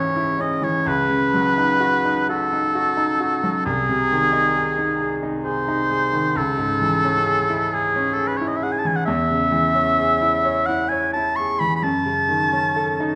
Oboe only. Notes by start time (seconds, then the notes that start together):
Already playing: C#5
0.41 D#5
0.64 C#5
0.88 B4
2.29 A4
3.65 G#4
5.44 C5
6.37 A4
7.74 G#4
8.13 A4
8.27 B4
8.37 C#5
8.48 D#5
8.56 E5
8.64 F#5
8.72 G#5
8.79 A5
8.87 G#5
8.96 F#5
9.05 E5
10.66 F#5
10.89 G#5
11.13 A5
11.36 C#6
11.59 B5
11.76 B5
11.83 A5